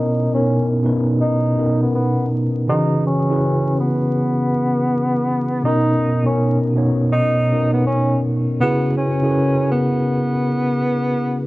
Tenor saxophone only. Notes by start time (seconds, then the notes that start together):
Already playing: D#4
0.34 C#4
1.21 D#4
1.83 B3
1.95 B3
2.69 D#4
3.07 C#4
3.80 B3
5.65 D#4
6.26 C#4
7.12 D#4
7.73 B3
7.86 C#4
8.61 B3
8.97 C#4
9.71 B3